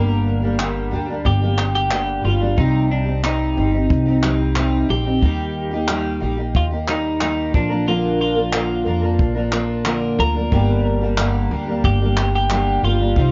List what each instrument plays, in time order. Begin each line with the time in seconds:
Already playing: upright bass G1, steel-string acoustic guitar G2 D3 G3 A#3 D4 G4, clean electric guitar A#4
0.42 steel-string acoustic guitar G3 A#3 D4 G4
0.58 steel-string acoustic guitar G2 D3 G3 A#3 D4 G4, clap
0.91 upright bass D2, steel-string acoustic guitar G3 A#3 D4 G4
1.08 steel-string acoustic guitar G3 A#3 D4 G4
1.25 upright bass G1, clean electric guitar G4, kick
1.42 steel-string acoustic guitar G3 A#3 D4 G4
1.57 steel-string acoustic guitar G3 A#3 D4 G4, clap
1.76 clean electric guitar G4
1.90 steel-string acoustic guitar G2 D3 G3 A#3 D4 G4, clap
2.24 upright bass G1, steel-string acoustic guitar G3 A#3 D4 G4, clean electric guitar F4
2.40 steel-string acoustic guitar G3 A#3 D4 G4
2.57 upright bass C2, steel-string acoustic guitar C3 G3 C4 D#4 G4, clean electric guitar D#4, kick
2.92 clean electric guitar D4
3.06 steel-string acoustic guitar C4 D#4 G4
3.23 steel-string acoustic guitar C3 G3 C4 D#4 G4, clean electric guitar D#4, clap
3.56 upright bass G1, steel-string acoustic guitar G3 C4 D#4 G4
3.72 steel-string acoustic guitar C4 D#4 G4
3.90 upright bass C2, kick
4.06 steel-string acoustic guitar C4 D#4 G4
4.22 steel-string acoustic guitar G3 C4 D#4 G4, clap
4.55 steel-string acoustic guitar C3 G3 C4 D#4 G4, clap
4.88 upright bass A#1, steel-string acoustic guitar G3 C4 D#4, clean electric guitar G4
5.05 steel-string acoustic guitar C4 D#4 G4
5.21 upright bass D#2, steel-string acoustic guitar D#3 G3 A#3 D#4 G4, kick
5.71 steel-string acoustic guitar A#3 D#4 G4
5.88 steel-string acoustic guitar D#3 G3 A#3 D#4 G4, clap
6.20 upright bass A#1, steel-string acoustic guitar G3 A#3 D#4 G4
6.37 steel-string acoustic guitar A#3 D#4 G4
6.55 upright bass D#2, clean electric guitar F4, kick
6.71 steel-string acoustic guitar A#3 D#4 G4
6.87 steel-string acoustic guitar G3 A#3 D#4 G4, clean electric guitar D#4, clap
7.20 steel-string acoustic guitar D#3 G3 A#3 D#4 G4, clean electric guitar D#4, clap
7.53 upright bass A#1, steel-string acoustic guitar F3 A#3 D4 A#4, clean electric guitar D4, kick
7.69 steel-string acoustic guitar F3 A#3 D4 A#4
7.86 steel-string acoustic guitar A#2 D3 F3 A#3 D4 A#4, clean electric guitar F4
8.21 clean electric guitar F4
8.36 steel-string acoustic guitar F3 A#3 D4 A#4
8.52 steel-string acoustic guitar A#2 D3 F3 A#3 D4 A#4, clap
8.85 upright bass F2, steel-string acoustic guitar F3 A#3 D4 A#4
9.02 steel-string acoustic guitar F3 A#3 D4 A#4
9.19 upright bass A#1, kick
9.35 steel-string acoustic guitar F3 A#3 D4 A#4
9.51 steel-string acoustic guitar F3 A#3 D4 A#4, clap
9.85 steel-string acoustic guitar A#2 D3 F3 A#3 D4 A#4, clap
10.18 upright bass D2, steel-string acoustic guitar F3 A#3 D4 A#4, clean electric guitar A#4
10.35 steel-string acoustic guitar F3 A#3 D4 A#4
10.51 upright bass G1, steel-string acoustic guitar G2 D3 G3 A#3 D4 G4, kick
11.01 steel-string acoustic guitar G3 A#3 D4 G4
11.18 steel-string acoustic guitar G2 D3 G3 A#3 D4 G4, clap
11.51 upright bass D2, steel-string acoustic guitar G3 A#3 D4 G4
11.67 steel-string acoustic guitar G3 A#3 D4 G4
11.84 upright bass G1, clean electric guitar G4, kick
12.00 steel-string acoustic guitar G3 A#3 D4 G4
12.17 steel-string acoustic guitar G3 A#3 D4 G4, clap
12.35 clean electric guitar G4
12.50 steel-string acoustic guitar G2 D3 G3 A#3 D4 G4, clap
12.83 upright bass G1, steel-string acoustic guitar G3 A#3 D4 G4, clean electric guitar F4
12.99 steel-string acoustic guitar G3 A#3 D4 G4
13.16 upright bass C2, steel-string acoustic guitar C3 G3 C4 D#4 G4, kick